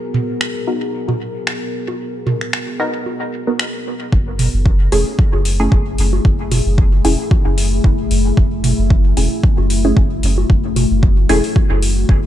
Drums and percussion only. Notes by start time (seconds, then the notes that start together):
0.14 mid tom
0.41 finger snap
1.09 mid tom, high conga
1.47 finger snap
1.88 high conga
2.27 mid tom, high conga
2.41 finger snap
2.53 finger snap
3.06 high conga
3.59 finger snap
4.12 kick
4.39 mid tom, open hi-hat
4.66 kick
4.92 open hi-hat
5.19 kick
5.33 high conga
5.45 open hi-hat
5.72 kick
5.98 open hi-hat
6.13 high conga
6.25 kick
6.52 mid tom, open hi-hat, high conga
6.78 kick
7.05 open hi-hat
7.31 kick, high conga
7.58 open hi-hat
7.84 kick
8.11 open hi-hat
8.37 kick
8.64 mid tom, open hi-hat
8.90 kick
9.17 open hi-hat
9.44 kick
9.58 high conga
9.70 open hi-hat
9.97 kick
10.23 open hi-hat
10.38 high conga
10.50 kick
10.76 mid tom, open hi-hat, high conga
11.03 kick
11.29 open hi-hat
11.44 open hi-hat
11.56 kick, high conga
11.82 open hi-hat
12.09 kick